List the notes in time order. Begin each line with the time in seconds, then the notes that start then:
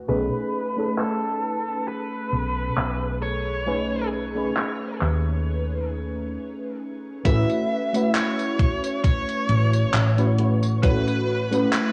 0.08 B1 A3 C#4 D#4 G#4 B4
0.76 A3 C#4 D#4 A4 B4
0.98 A4, clap
1.88 B4
2.33 B1
2.77 B1, clap
3.22 C#5
3.66 A3 C#4 D#4 G#4 B4
4.35 A3 C#4 D#4 G#4 B4
4.57 clap
5.01 D#2, clap
7.25 A1 A3 C#4 E4 F#4 B4 E5, kick, closed hi-hat, tambourine
7.50 closed hi-hat, tambourine
7.93 A3 C#4 E4 F#4 B4, closed hi-hat, tambourine
8.15 C#5, clap, closed hi-hat, tambourine
8.39 closed hi-hat, tambourine
8.59 kick, closed hi-hat
8.84 closed hi-hat, tambourine
9.04 C#5, kick, closed hi-hat, tambourine
9.29 closed hi-hat, tambourine
9.49 A1, closed hi-hat
9.73 closed hi-hat, tambourine
9.94 A1, clap, closed hi-hat, tambourine
10.17 A3 C#4 E4 F#4 B4, closed hi-hat, tambourine
10.38 A3 C#4 E4 F#4 B4, closed hi-hat
10.63 closed hi-hat, tambourine
10.83 A3 C#4 E4 F#4 B4, kick, closed hi-hat, tambourine
11.08 closed hi-hat, tambourine
11.51 A3 C#4 E4 F#4 B4, closed hi-hat, tambourine
11.73 B4, clap, closed hi-hat, tambourine